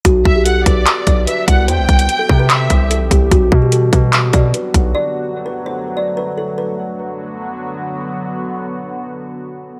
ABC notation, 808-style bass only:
X:1
M:4/4
L:1/16
Q:1/4=147
K:Bphr
V:1 name="808-style bass" clef=bass
B,,,2 B,,,4 B,,,2 z2 B,,,2 z2 C,,2 | E,, C,, C,,2 z2 C,4 C,,3 B,,, C,,2 | B,,,2 B,,4 B,,4 B,,2 z2 B,,,2 | z16 |
z16 | z16 |]